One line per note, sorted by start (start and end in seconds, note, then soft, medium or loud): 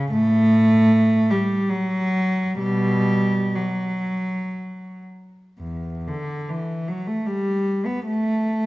0.00 0.12 C#3 medium
0.12 1.27 A2 medium
0.12 1.29 A3 loud
1.31 1.71 G3 medium
1.69 2.58 F#3 medium
2.59 3.52 B2 medium
2.59 3.54 G3 medium
3.56 5.00 F#3 medium
5.60 6.06 E2 medium
6.08 6.49 D3 medium
6.49 6.88 E3 medium
6.88 7.07 F#3 medium
7.07 7.26 A3 medium
7.26 7.85 G3 medium
7.86 8.06 B3 medium
8.06 8.66 A3 medium